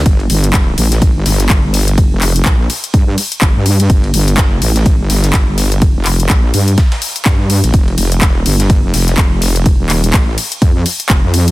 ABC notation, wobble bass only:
X:1
M:4/4
L:1/16
Q:"Swing 16ths" 1/4=125
K:Gm
V:1 name="Wobble bass" clef=bass
G,,,2 G,,,4 A,,,3 G,,, G,,,2 G,,, G,,,3- | G,,, F,,,3 B,,,2 z2 G,,2 z2 G,,, G,,3 | G,,,2 G,,,4 A,,,3 G,,, G,,,2 G,,, G,,,3- | G,,, F,,,3 B,,,2 G,,2 z4 G,,3 B,,, |
F,,,2 F,,,4 G,,,3 F,,, F,,,2 F,,, F,,,3- | F,,, E,,,3 A,,,2 z2 F,,2 z2 F,,, F,,3 |]